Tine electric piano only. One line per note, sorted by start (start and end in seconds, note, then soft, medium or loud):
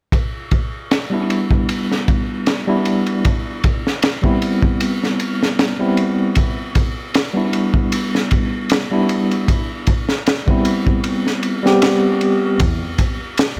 1.10 2.62 G3 medium
1.10 2.63 B3 medium
1.10 2.63 D4 medium
1.10 2.64 E4 medium
2.67 3.22 G3 medium
2.67 3.23 B3 medium
2.67 3.23 D4 medium
2.67 3.23 E4 medium
4.22 5.74 G3 medium
4.22 5.75 B3 medium
4.22 5.75 C4 medium
4.26 5.76 E4 medium
5.79 6.34 G3 medium
5.79 6.34 B3 medium
5.79 6.35 C4 medium
5.79 6.35 E4 medium
7.34 8.86 G3 medium
7.34 8.86 B3 medium
7.34 8.87 D4 medium
7.34 8.87 E4 medium
8.91 9.46 G3 medium
8.91 9.46 B3 medium
8.91 9.47 D4 medium
8.91 9.47 E4 medium
10.47 11.60 G3 medium
10.47 11.60 B3 medium
10.47 11.61 C4 medium
10.51 11.62 E4 medium
11.63 12.57 G3 medium
11.63 12.58 B3 medium
11.63 12.59 C4 medium
11.63 12.59 G4 medium